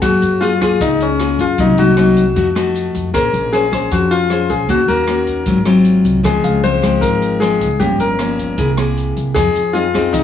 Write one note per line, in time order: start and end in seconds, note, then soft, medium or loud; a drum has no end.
0.00 0.21 F#2 medium
0.00 0.78 F#3 medium
0.00 0.38 A#3 medium
0.00 0.42 F#4 loud
0.00 0.39 G#4 medium
0.00 0.18 G#5 medium
0.00 kick medium
0.00 cross-stick medium
0.00 closed hi-hat medium
0.22 0.76 F#2 medium
0.22 closed hi-hat soft
0.41 0.53 A#3 medium
0.41 0.59 F4 loud
0.41 0.53 F4 medium
0.41 0.53 G#4 medium
0.41 closed hi-hat soft
0.61 1.16 A#3 medium
0.61 0.81 F4 medium
0.61 1.16 F4 medium
0.61 1.17 G#4 medium
0.61 kick soft
0.61 cross-stick medium
0.61 closed hi-hat soft
0.81 1.35 C#2 medium
0.81 1.57 C#3 medium
0.81 1.01 D#4 loud
0.81 kick medium
0.81 closed hi-hat medium
1.00 1.41 C#4 medium
1.00 closed hi-hat soft
1.19 1.44 A#3 medium
1.19 1.45 F4 medium
1.19 1.45 G#4 medium
1.19 cross-stick medium
1.19 closed hi-hat soft
1.38 1.60 F#2 medium
1.38 1.60 F4 medium
1.38 kick soft
1.38 closed hi-hat soft
1.58 1.76 C2 loud
1.58 2.34 C3 medium
1.58 1.75 F#3 soft
1.58 1.75 A#3 soft
1.58 1.75 D#4 medium
1.58 1.79 D#4 medium
1.58 kick medium
1.58 closed hi-hat medium
1.77 2.32 C2 medium
1.77 1.94 F#3 medium
1.77 1.94 A#3 medium
1.77 1.94 D#4 medium
1.77 2.52 F#4 loud
1.77 closed hi-hat soft
1.97 2.23 F#3 medium
1.97 2.23 A#3 medium
1.97 2.24 D#4 medium
1.97 cross-stick medium
1.97 closed hi-hat soft
2.17 kick soft
2.17 closed hi-hat soft
2.36 2.90 F2 medium
2.36 3.12 F3 medium
2.36 2.47 A3 medium
2.36 2.47 D#4 medium
2.36 2.48 F#4 medium
2.36 kick medium
2.36 closed hi-hat medium
2.55 3.11 A3 medium
2.55 3.11 D#4 medium
2.55 3.11 F#4 medium
2.55 cross-stick medium
2.55 closed hi-hat soft
2.76 closed hi-hat soft
2.94 3.15 F2 medium
2.94 kick soft
2.94 closed hi-hat soft
3.13 3.32 A#1 medium
3.13 3.89 A#3 medium
3.13 3.49 C#4 medium
3.13 3.50 G#4 medium
3.13 3.54 A#4 loud
3.13 3.50 C5 medium
3.13 kick medium
3.13 cross-stick medium
3.13 closed hi-hat medium
3.33 3.88 A#1 loud
3.33 closed hi-hat medium
3.53 3.64 C#4 medium
3.53 3.93 G#4 medium
3.53 3.65 G#4 medium
3.53 3.65 C5 medium
3.53 closed hi-hat soft
3.71 4.27 C#4 medium
3.71 4.27 G#4 medium
3.71 4.27 C5 medium
3.71 kick soft
3.71 cross-stick medium
3.71 closed hi-hat soft
3.91 4.46 F2 medium
3.91 4.67 F3 medium
3.91 4.12 F#4 medium
3.91 kick medium
3.91 closed hi-hat medium
4.11 4.51 F4 loud
4.11 closed hi-hat soft
4.30 4.67 C#4 medium
4.30 4.68 G#4 medium
4.30 4.68 C5 medium
4.30 cross-stick medium
4.30 closed hi-hat soft
4.50 4.69 A#1 medium
4.50 4.70 G#4 medium
4.50 kick soft
4.50 closed hi-hat soft
4.69 4.87 D#2 loud
4.69 5.45 D#3 medium
4.69 4.80 A#3 medium
4.69 4.81 C#4 medium
4.69 4.81 F#4 medium
4.69 4.88 F#4 medium
4.69 kick medium
4.69 closed hi-hat medium
4.88 5.43 D#2 medium
4.88 5.05 A#3 medium
4.88 5.05 C#4 medium
4.88 5.05 F#4 medium
4.88 5.62 A#4 loud
4.88 closed hi-hat soft
5.07 5.45 A#3 medium
5.07 5.45 C#4 medium
5.07 5.45 F#4 medium
5.07 cross-stick medium
5.07 closed hi-hat soft
5.27 kick soft
5.27 closed hi-hat soft
5.46 6.01 G#1 medium
5.46 6.23 G#2 medium
5.46 5.58 F#3 soft
5.46 5.58 C4 medium
5.46 5.59 F4 medium
5.46 kick medium
5.46 closed hi-hat medium
5.65 6.21 F#3 medium
5.65 6.21 C4 medium
5.65 6.22 F4 medium
5.65 cross-stick medium
5.65 closed hi-hat soft
5.85 closed hi-hat soft
6.05 6.24 C2 medium
6.05 kick soft
6.05 closed hi-hat soft
6.23 6.42 C#2 medium
6.23 7.00 C#3 medium
6.23 6.60 F3 medium
6.23 6.60 G#3 medium
6.23 6.60 C4 medium
6.23 6.61 G#4 medium
6.23 kick medium
6.23 cross-stick medium
6.23 closed hi-hat medium
6.43 6.98 C#2 medium
6.43 7.51 F5 medium
6.43 closed hi-hat soft
6.63 6.80 F3 medium
6.63 6.80 G#3 medium
6.63 6.80 C4 medium
6.63 7.04 C5 loud
6.63 closed hi-hat soft
6.82 7.38 F3 medium
6.82 7.38 G#3 medium
6.82 7.38 C4 medium
6.82 kick soft
6.82 cross-stick medium
6.82 closed hi-hat soft
7.01 7.57 G#1 medium
7.01 7.78 G#2 medium
7.01 7.42 A#4 loud
7.01 kick medium
7.01 closed hi-hat medium
7.22 closed hi-hat soft
7.40 7.67 F3 medium
7.40 7.67 G#3 medium
7.40 7.67 C4 medium
7.40 7.81 G#4 medium
7.40 cross-stick medium
7.40 closed hi-hat soft
7.61 7.82 C#2 medium
7.61 kick soft
7.61 closed hi-hat soft
7.79 7.98 G1 loud
7.79 8.56 G2 medium
7.79 8.16 F3 soft
7.79 8.16 A#3 soft
7.79 8.16 C#4 medium
7.79 8.00 G4 medium
7.79 kick medium
7.79 closed hi-hat medium
7.99 8.54 G1 medium
7.99 8.74 A#4 medium
7.99 closed hi-hat soft
8.19 8.56 F3 soft
8.19 8.57 A#3 medium
8.19 8.57 C#4 medium
8.19 cross-stick medium
8.19 closed hi-hat soft
8.38 kick soft
8.38 closed hi-hat soft
8.58 9.12 C2 medium
8.58 9.34 C3 medium
8.58 8.69 A#3 medium
8.58 8.70 E4 medium
8.58 8.70 G#4 medium
8.58 kick medium
8.58 closed hi-hat medium
8.77 9.33 A#3 medium
8.77 9.33 E4 medium
8.77 9.33 G#4 medium
8.77 cross-stick medium
8.77 closed hi-hat soft
8.97 closed hi-hat soft
9.16 9.37 C2 medium
9.16 kick soft
9.16 closed hi-hat soft
9.35 9.54 F2 loud
9.35 10.12 F3 soft
9.35 9.61 C4 medium
9.35 9.61 D#4 medium
9.35 9.75 G#4 loud
9.35 9.61 G#4 medium
9.35 kick medium
9.35 cross-stick medium
9.35 closed hi-hat medium
9.55 closed hi-hat soft
9.73 9.86 C4 medium
9.73 9.86 D#4 medium
9.73 10.14 F4 loud
9.73 9.86 G#4 medium
9.73 closed hi-hat soft
9.94 10.24 C4 medium
9.94 10.24 D#4 medium
9.94 10.24 G#4 medium
9.94 kick soft
9.94 cross-stick medium
9.94 closed hi-hat soft
10.13 10.24 C2 medium
10.13 10.24 C3 medium
10.13 10.24 D#4 medium
10.13 kick medium
10.13 closed hi-hat medium